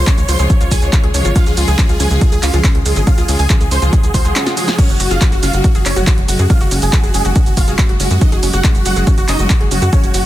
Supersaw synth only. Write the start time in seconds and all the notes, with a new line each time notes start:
0.07 C#5
0.18 C#5
0.28 C5 C6
0.39 C#5
0.50 C#5
0.61 C#5
0.71 G#4 G#5
0.82 C#5
0.93 C#5
1.14 C#5
1.25 C#5
1.36 F4 F5
1.46 G#4
1.57 G#4
1.68 G#4 G#5
1.79 G#4
1.89 G#4
2.00 G#4 G#5
2.11 G#4
2.21 G#4
2.32 G#4
2.43 F4 F5
2.53 G#4
2.64 G#4
2.86 G#4
2.96 G#4
3.07 F4 F5
3.18 G#4
3.28 G#4
3.39 G#4 G#5
3.50 G#4
3.61 G#4
3.71 C5 C6
3.82 G#4
3.93 G#4
4.03 G#4
4.14 C5 C6
4.25 G#4
4.36 G#4
4.57 G#4
4.68 G#4
4.79 C#4 C#5
4.89 F#4
5.00 F#4
5.11 F4 F5
5.21 F#4
5.32 F#4
5.43 F4 F5
5.53 F#4
5.64 F#4
5.75 F#4
5.86 C#4 C#5
5.96 F#4
6.07 F#4
6.28 F#4
6.39 F#4
6.50 F4 F5
6.61 F#4
6.71 F#4
6.82 G#4 G#5
6.93 F#4
7.04 F#4
7.14 G#4 G#5
7.25 F#4
7.36 F#4
7.46 F#4
7.57 F4 F5
7.68 F#4
7.79 F#4
8.00 F#4
8.11 F#4
8.21 D#4 D#5
8.32 F#4
8.43 F#4
8.53 F#4 F#5
8.64 F#4
8.75 F#4
8.86 F#4 F#5
8.96 F#4
9.07 F#4
9.18 F#4
9.29 D#4 D#5
9.39 F#4
9.50 F#4
9.71 F#4
9.82 F#4
9.93 C#4 C#5
10.04 F#4
10.14 F#4